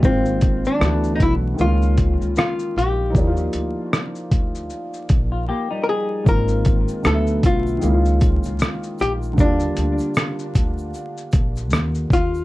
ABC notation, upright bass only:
X:1
M:4/4
L:1/16
Q:"Swing 16ths" 1/4=77
K:Eb
V:1 name="Upright bass" clef=bass
A,,,3 z D,,2 =B,,,2 _D,,3 D,, z2 _B,,,2 | E,,2 D,, z3 D,,2 z2 B,,,2 z4 | A,,,3 z D,,2 =B,,,2 _D,,3 D,, z2 _B,,,2 | E,,2 D,, z3 D,,2 z2 B,,,2 E,,2 E,,2 |]